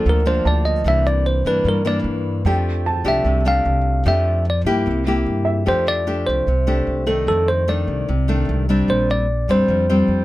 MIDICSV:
0, 0, Header, 1, 5, 480
1, 0, Start_track
1, 0, Key_signature, -1, "major"
1, 0, Tempo, 401338
1, 1015, Time_signature, 4, 2, 24, 8
1, 12255, End_track
2, 0, Start_track
2, 0, Title_t, "Grand piano"
2, 0, Program_c, 0, 0
2, 0, Control_c, 0, 64, 127
2, 0, Note_on_c, 0, 76, 52
2, 0, Note_on_c, 0, 79, 39
2, 186, Note_off_c, 0, 76, 0
2, 350, Note_off_c, 0, 79, 0
2, 541, Note_on_c, 0, 81, 53
2, 1031, Control_c, 0, 64, 0
2, 1210, Note_off_c, 0, 81, 0
2, 2944, Note_on_c, 0, 79, 57
2, 3188, Control_c, 0, 64, 127
2, 3424, Note_on_c, 0, 81, 66
2, 4028, Note_off_c, 0, 79, 0
2, 4508, Note_off_c, 0, 81, 0
2, 5827, Control_c, 0, 64, 0
2, 6002, Control_c, 0, 64, 127
2, 6516, Note_on_c, 0, 76, 52
2, 6787, Control_c, 0, 64, 0
2, 6970, Note_off_c, 0, 76, 0
2, 6984, Control_c, 0, 64, 127
2, 8707, Control_c, 0, 64, 0
2, 12255, End_track
3, 0, Start_track
3, 0, Title_t, "Tine electric piano"
3, 0, Program_c, 1, 4
3, 113, Note_on_c, 1, 70, 77
3, 318, Note_off_c, 1, 70, 0
3, 326, Note_on_c, 1, 72, 87
3, 544, Note_off_c, 1, 72, 0
3, 567, Note_on_c, 1, 74, 72
3, 781, Note_on_c, 1, 75, 71
3, 784, Note_off_c, 1, 74, 0
3, 1011, Note_off_c, 1, 75, 0
3, 1053, Note_on_c, 1, 76, 94
3, 1267, Note_off_c, 1, 76, 0
3, 1276, Note_on_c, 1, 74, 90
3, 1498, Note_off_c, 1, 74, 0
3, 1511, Note_on_c, 1, 72, 62
3, 1736, Note_off_c, 1, 72, 0
3, 1761, Note_on_c, 1, 71, 69
3, 1981, Note_off_c, 1, 71, 0
3, 2016, Note_on_c, 1, 70, 74
3, 2228, Note_off_c, 1, 70, 0
3, 2242, Note_on_c, 1, 74, 91
3, 2377, Note_off_c, 1, 74, 0
3, 3685, Note_on_c, 1, 76, 80
3, 4116, Note_off_c, 1, 76, 0
3, 4159, Note_on_c, 1, 77, 93
3, 4817, Note_off_c, 1, 77, 0
3, 4878, Note_on_c, 1, 76, 78
3, 5312, Note_off_c, 1, 76, 0
3, 5380, Note_on_c, 1, 74, 73
3, 5510, Note_off_c, 1, 74, 0
3, 6800, Note_on_c, 1, 72, 97
3, 7010, Note_off_c, 1, 72, 0
3, 7035, Note_on_c, 1, 74, 110
3, 7494, Note_on_c, 1, 72, 82
3, 7517, Note_off_c, 1, 74, 0
3, 8457, Note_on_c, 1, 69, 65
3, 8482, Note_off_c, 1, 72, 0
3, 8695, Note_off_c, 1, 69, 0
3, 8709, Note_on_c, 1, 69, 87
3, 8948, Note_off_c, 1, 69, 0
3, 8950, Note_on_c, 1, 72, 86
3, 9188, Note_off_c, 1, 72, 0
3, 9198, Note_on_c, 1, 74, 73
3, 10098, Note_off_c, 1, 74, 0
3, 10645, Note_on_c, 1, 72, 90
3, 10876, Note_off_c, 1, 72, 0
3, 10895, Note_on_c, 1, 74, 93
3, 11368, Note_off_c, 1, 74, 0
3, 11371, Note_on_c, 1, 72, 82
3, 12255, Note_off_c, 1, 72, 0
3, 12255, End_track
4, 0, Start_track
4, 0, Title_t, "Nylon-string guitar"
4, 0, Program_c, 2, 24
4, 0, Note_on_c, 2, 53, 63
4, 0, Note_on_c, 2, 58, 54
4, 0, Note_on_c, 2, 62, 57
4, 74, Note_on_c, 2, 50, 51
4, 256, Note_off_c, 2, 53, 0
4, 259, Note_off_c, 2, 58, 0
4, 261, Note_off_c, 2, 62, 0
4, 306, Note_on_c, 2, 53, 58
4, 314, Note_on_c, 2, 58, 56
4, 320, Note_on_c, 2, 62, 58
4, 982, Note_off_c, 2, 53, 0
4, 986, Note_off_c, 2, 58, 0
4, 989, Note_off_c, 2, 62, 0
4, 1000, Note_off_c, 2, 50, 0
4, 1024, Note_on_c, 2, 48, 42
4, 1029, Note_on_c, 2, 52, 46
4, 1030, Note_on_c, 2, 58, 50
4, 1039, Note_on_c, 2, 62, 55
4, 1701, Note_off_c, 2, 52, 0
4, 1704, Note_off_c, 2, 58, 0
4, 1705, Note_off_c, 2, 62, 0
4, 1746, Note_on_c, 2, 52, 52
4, 1750, Note_on_c, 2, 58, 51
4, 1759, Note_on_c, 2, 62, 62
4, 1956, Note_off_c, 2, 48, 0
4, 1977, Note_on_c, 2, 43, 53
4, 2181, Note_off_c, 2, 52, 0
4, 2184, Note_off_c, 2, 58, 0
4, 2186, Note_off_c, 2, 62, 0
4, 2210, Note_on_c, 2, 52, 58
4, 2219, Note_on_c, 2, 58, 60
4, 2220, Note_on_c, 2, 62, 65
4, 2893, Note_off_c, 2, 52, 0
4, 2897, Note_off_c, 2, 62, 0
4, 2898, Note_off_c, 2, 58, 0
4, 2911, Note_off_c, 2, 43, 0
4, 2939, Note_on_c, 2, 53, 43
4, 2946, Note_on_c, 2, 57, 54
4, 2946, Note_on_c, 2, 62, 49
4, 2953, Note_on_c, 2, 67, 60
4, 3415, Note_off_c, 2, 57, 0
4, 3417, Note_off_c, 2, 62, 0
4, 3420, Note_off_c, 2, 67, 0
4, 3643, Note_on_c, 2, 57, 59
4, 3647, Note_on_c, 2, 62, 65
4, 3658, Note_on_c, 2, 67, 60
4, 3872, Note_off_c, 2, 53, 0
4, 3900, Note_on_c, 2, 48, 53
4, 4089, Note_off_c, 2, 57, 0
4, 4091, Note_off_c, 2, 62, 0
4, 4097, Note_off_c, 2, 67, 0
4, 4130, Note_on_c, 2, 57, 54
4, 4136, Note_on_c, 2, 62, 57
4, 4140, Note_on_c, 2, 67, 63
4, 4814, Note_off_c, 2, 57, 0
4, 4815, Note_off_c, 2, 62, 0
4, 4815, Note_off_c, 2, 67, 0
4, 4832, Note_off_c, 2, 48, 0
4, 4845, Note_on_c, 2, 53, 50
4, 4851, Note_on_c, 2, 57, 43
4, 4855, Note_on_c, 2, 62, 52
4, 4861, Note_on_c, 2, 67, 54
4, 5329, Note_off_c, 2, 57, 0
4, 5329, Note_off_c, 2, 62, 0
4, 5334, Note_off_c, 2, 67, 0
4, 5578, Note_on_c, 2, 64, 64
4, 5580, Note_on_c, 2, 58, 63
4, 5582, Note_on_c, 2, 67, 72
4, 5784, Note_off_c, 2, 53, 0
4, 5823, Note_on_c, 2, 48, 51
4, 6015, Note_off_c, 2, 64, 0
4, 6017, Note_off_c, 2, 58, 0
4, 6018, Note_off_c, 2, 67, 0
4, 6060, Note_on_c, 2, 58, 60
4, 6065, Note_on_c, 2, 64, 60
4, 6077, Note_on_c, 2, 67, 64
4, 6737, Note_off_c, 2, 58, 0
4, 6740, Note_off_c, 2, 64, 0
4, 6746, Note_off_c, 2, 67, 0
4, 6753, Note_off_c, 2, 48, 0
4, 6768, Note_on_c, 2, 53, 48
4, 6770, Note_on_c, 2, 57, 45
4, 6773, Note_on_c, 2, 62, 39
4, 6778, Note_on_c, 2, 67, 52
4, 7212, Note_off_c, 2, 57, 0
4, 7215, Note_off_c, 2, 62, 0
4, 7215, Note_off_c, 2, 67, 0
4, 7259, Note_on_c, 2, 57, 54
4, 7263, Note_on_c, 2, 62, 57
4, 7268, Note_on_c, 2, 67, 64
4, 7706, Note_off_c, 2, 53, 0
4, 7732, Note_off_c, 2, 57, 0
4, 7735, Note_off_c, 2, 62, 0
4, 7736, Note_off_c, 2, 67, 0
4, 7749, Note_on_c, 2, 48, 53
4, 7977, Note_on_c, 2, 57, 61
4, 7984, Note_on_c, 2, 62, 55
4, 7986, Note_on_c, 2, 67, 58
4, 8417, Note_off_c, 2, 57, 0
4, 8419, Note_off_c, 2, 62, 0
4, 8420, Note_off_c, 2, 67, 0
4, 8450, Note_on_c, 2, 51, 58
4, 8457, Note_on_c, 2, 57, 57
4, 8460, Note_on_c, 2, 62, 56
4, 8677, Note_off_c, 2, 48, 0
4, 8709, Note_on_c, 2, 41, 50
4, 9133, Note_off_c, 2, 51, 0
4, 9136, Note_off_c, 2, 57, 0
4, 9138, Note_off_c, 2, 62, 0
4, 9181, Note_on_c, 2, 51, 57
4, 9187, Note_on_c, 2, 57, 54
4, 9187, Note_on_c, 2, 62, 58
4, 9637, Note_off_c, 2, 41, 0
4, 9654, Note_off_c, 2, 51, 0
4, 9656, Note_off_c, 2, 57, 0
4, 9657, Note_off_c, 2, 62, 0
4, 9670, Note_on_c, 2, 48, 50
4, 9903, Note_on_c, 2, 51, 51
4, 9911, Note_on_c, 2, 57, 58
4, 9917, Note_on_c, 2, 62, 61
4, 10340, Note_off_c, 2, 51, 0
4, 10344, Note_off_c, 2, 57, 0
4, 10346, Note_off_c, 2, 62, 0
4, 10393, Note_on_c, 2, 55, 63
4, 10401, Note_on_c, 2, 60, 59
4, 10406, Note_on_c, 2, 62, 66
4, 10598, Note_off_c, 2, 48, 0
4, 10631, Note_on_c, 2, 46, 46
4, 11065, Note_off_c, 2, 55, 0
4, 11069, Note_off_c, 2, 60, 0
4, 11072, Note_off_c, 2, 62, 0
4, 11351, Note_on_c, 2, 55, 60
4, 11359, Note_on_c, 2, 60, 55
4, 11367, Note_on_c, 2, 62, 62
4, 11559, Note_off_c, 2, 46, 0
4, 11603, Note_on_c, 2, 53, 43
4, 11784, Note_off_c, 2, 55, 0
4, 11788, Note_off_c, 2, 60, 0
4, 11792, Note_off_c, 2, 62, 0
4, 11835, Note_on_c, 2, 55, 58
4, 11840, Note_on_c, 2, 60, 60
4, 11848, Note_on_c, 2, 62, 51
4, 12255, Note_off_c, 2, 53, 0
4, 12255, Note_off_c, 2, 55, 0
4, 12255, Note_off_c, 2, 60, 0
4, 12255, Note_off_c, 2, 62, 0
4, 12255, End_track
5, 0, Start_track
5, 0, Title_t, "Upright bass"
5, 0, Program_c, 3, 32
5, 69, Note_on_c, 3, 38, 91
5, 509, Note_off_c, 3, 38, 0
5, 542, Note_on_c, 3, 38, 88
5, 985, Note_off_c, 3, 38, 0
5, 1008, Note_on_c, 3, 36, 100
5, 1683, Note_off_c, 3, 36, 0
5, 1730, Note_on_c, 3, 43, 76
5, 1955, Note_off_c, 3, 43, 0
5, 1966, Note_on_c, 3, 43, 87
5, 2416, Note_off_c, 3, 43, 0
5, 2442, Note_on_c, 3, 43, 90
5, 2893, Note_off_c, 3, 43, 0
5, 2928, Note_on_c, 3, 41, 97
5, 3602, Note_off_c, 3, 41, 0
5, 3638, Note_on_c, 3, 36, 79
5, 3868, Note_off_c, 3, 36, 0
5, 3882, Note_on_c, 3, 36, 88
5, 4333, Note_off_c, 3, 36, 0
5, 4371, Note_on_c, 3, 36, 91
5, 4818, Note_off_c, 3, 36, 0
5, 4853, Note_on_c, 3, 41, 109
5, 5524, Note_off_c, 3, 41, 0
5, 5560, Note_on_c, 3, 43, 84
5, 5788, Note_off_c, 3, 43, 0
5, 5813, Note_on_c, 3, 36, 88
5, 6259, Note_off_c, 3, 36, 0
5, 6295, Note_on_c, 3, 43, 83
5, 6740, Note_off_c, 3, 43, 0
5, 6786, Note_on_c, 3, 41, 88
5, 7451, Note_off_c, 3, 41, 0
5, 7511, Note_on_c, 3, 36, 68
5, 7725, Note_off_c, 3, 36, 0
5, 7736, Note_on_c, 3, 36, 81
5, 8181, Note_off_c, 3, 36, 0
5, 8215, Note_on_c, 3, 36, 81
5, 8660, Note_off_c, 3, 36, 0
5, 8694, Note_on_c, 3, 41, 89
5, 9366, Note_off_c, 3, 41, 0
5, 9418, Note_on_c, 3, 36, 82
5, 9639, Note_off_c, 3, 36, 0
5, 9673, Note_on_c, 3, 36, 94
5, 10110, Note_off_c, 3, 36, 0
5, 10152, Note_on_c, 3, 36, 95
5, 10590, Note_off_c, 3, 36, 0
5, 10621, Note_on_c, 3, 34, 93
5, 11290, Note_off_c, 3, 34, 0
5, 11339, Note_on_c, 3, 41, 78
5, 11560, Note_off_c, 3, 41, 0
5, 11581, Note_on_c, 3, 41, 92
5, 12025, Note_off_c, 3, 41, 0
5, 12056, Note_on_c, 3, 41, 79
5, 12255, Note_off_c, 3, 41, 0
5, 12255, End_track
0, 0, End_of_file